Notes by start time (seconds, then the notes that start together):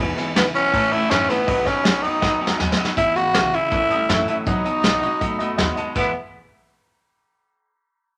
Already playing: E2 B2
0.00 E1 E2 B2 E3 G#3 B3 E4 G#5
0.16 E2 B2 E3 G#3 B3 E4 B4 E5 G#5, muted upright bass stroke, snare, ride
0.35 E1 E2 C#3 E3 G#3 B3 E4 B4 E5 G#5, snare, ride
0.54 B1 E2 B2 E3 G#3 B3 C#4 E4 B4 F#5, ride
0.72 A1 A2 E3 A3 C#4 E4 C#5 E5 A5, kick, ride
0.91 C#2 A2 E3 A3 C#4 E4 C#5 E5 A5, ride
1.10 F#2 A2 E3 F#3 A3 C#4 E4 C#5 E5 A5, snare, ride
1.28 A2 E3 A3 B3 C#4 E4 C#5 E5 A5, muted upright bass stroke, snare, ride
1.47 B1 B2 F#3 B3 D#4 F#4 D#5 F#5 B5, kick, ride
1.65 B2 F#3 B3 C#4 D#4 F#4 D#5 F#5 B5, muted upright bass stroke, kick, snare, ride
1.84 B1 B2 F#3 G#3 B3 D#4 F#4 D#5 F#5 B5, snare, ride
2.03 F#2 B2 F#3 B3 D#4 F#4 D#5 F#5 B5, ride
2.21 D#2 B2 F#3 B3 D#4 F#4 D#5 F#5 B5, kick, snare
2.39 E2 B2 F#3 D#4 F#4 D#5 F#5 G#5
2.44 B3, snare
2.58 D#2 B2 F#3 G#3 B3 D#4 F#4 D#5 F#5 G#5, snare
2.72 snare
2.77 B2 F#3 B3 D#4 F#4 D#5 F#5 B5
2.85 snare
2.96 E1 E2 B2 E3 G#3 B3 E4 E5 G#5, kick, closed hi-hat
3.15 G#1 E2 B2 E3 G#3 B3 E4 F#4 E5 G#5 B5, closed hi-hat
3.33 B1 E2 B2 C#3 E3 G#3 B3 E4 E5 G#5 C#6, snare, closed hi-hat
3.52 E2 C#3 E3 G#3 B3 E4 E5 G#5 B5, muted upright bass stroke, closed hi-hat
3.70 A1 A2 E3 A3 C#4 E4 E5 A5 C#6, kick, closed hi-hat
3.89 A2 G3 A3 C#4 E4 E5 A5 D#6, muted upright bass stroke, closed hi-hat
4.08 F#2 A2 E3 F#3 A3 C#4 E4 E5 A5 C#6, kick, snare, closed hi-hat
4.27 A2 F#3 A3 C#4 E4 E5 A5 C#6, muted upright bass stroke, closed hi-hat
4.46 B1 B2 F#3 B3 D#4 F#4 D#5 F#5 B5, kick, closed hi-hat
4.64 B2 F#3 B3 D#4 F#4 D#5 F#5 A5, muted upright bass stroke, closed hi-hat
4.83 B1 B2 F#3 B3 D#4 F#4 D#5 F#5 C#6, snare, closed hi-hat
5.02 B2 G#3 B3 D#4 F#4 D#5 F#5 C#6, muted upright bass stroke, closed hi-hat
5.20 D#2 B2 F#3 A3 B3 D#4 F#4 D#5 F#5 B5, kick, closed hi-hat
5.39 F#2 B2 A3 B3 D#4 F#4 D#5 F#5 B5, closed hi-hat
5.58 D#2 B2 F#3 G#3 B3 D#4 F#4 D#5 F#5 B5, kick, snare, closed hi-hat
5.76 B2 G#3 B3 D#4 F#4 D#5 F#5 A5, closed hi-hat
5.95 E1 E2 B2 E3 G#3 B3 E4 E5 G#5 B5, kick, crash